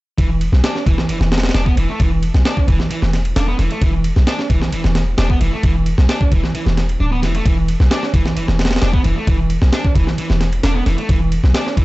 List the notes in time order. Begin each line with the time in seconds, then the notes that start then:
0.18 E1 E3, kick, ride
0.41 ride
0.52 B1, snare
0.64 D4, snare, ride
0.75 snare
0.86 E1 E3, kick, ride
0.98 snare
1.09 E1 E3, ride
1.20 E1, snare
1.32 snare, ride
1.38 snare, ride
1.43 snare, ride
1.49 snare, ride
1.54 E1 D4, snare, ride
1.66 B3, kick
1.77 E1 E3, ride
1.89 A3
2.00 E1 E3, kick, ride
2.23 ride
2.34 B1, snare
2.45 D4, snare, ride
2.57 kick
2.68 E1 E3, kick, ride
2.80 snare
2.91 E3, ride
3.02 E1, snare
3.13 snare, ride
3.25 ride
3.36 E1 D4, snare, ride
3.48 B3
3.59 E1 E3, snare, ride
3.71 A3, ride
3.81 E1 E3, kick, ride
4.04 ride
4.16 B1, snare
4.27 D4, snare, ride
4.39 snare
4.50 E1 E3, kick, ride
4.62 snare
4.72 E1 E3, ride
4.84 E1, snare
4.95 snare, ride
5.18 E1 D4, snare, ride
5.30 B3, kick
5.41 E1 E3, ride
5.53 A3
5.63 E1 E3, kick, ride
5.86 ride
5.98 B1, snare
6.09 D4, snare, ride
6.21 kick
6.32 E1 E3, kick, ride
6.44 snare
6.55 E3, ride
6.66 E1, snare
6.77 snare, ride
6.89 ride
7.00 D1 D4
7.12 B3
7.23 E1 E3, snare, ride
7.35 A3, ride
7.46 E1 E3, kick, ride
7.68 ride
7.80 B1, snare
7.91 D4, snare, ride
8.03 snare
8.14 E1 E3, kick, ride
8.26 snare
8.36 E1 E3, ride
8.48 E1, snare
8.59 snare, ride
8.65 snare, ride
8.71 snare, ride
8.76 snare, ride
8.82 E1 D4, snare, ride
8.93 B3, kick
9.04 E1 E3, ride
9.16 A3
9.27 E1 E3, kick, ride
9.50 ride
9.62 B1, snare
9.73 D4, snare, ride
9.85 kick
9.95 E1 E3, kick, ride
10.07 snare
10.18 E3, ride
10.30 E1, snare
10.41 snare, ride
10.53 ride
10.63 E1 D4, snare, ride
10.75 B3
10.86 E1 E3, snare, ride
10.98 A3, ride
11.09 E1 E3, kick, ride
11.32 ride
11.44 B1, snare
11.54 D4, snare, ride
11.66 snare
11.77 E1 E3, kick, ride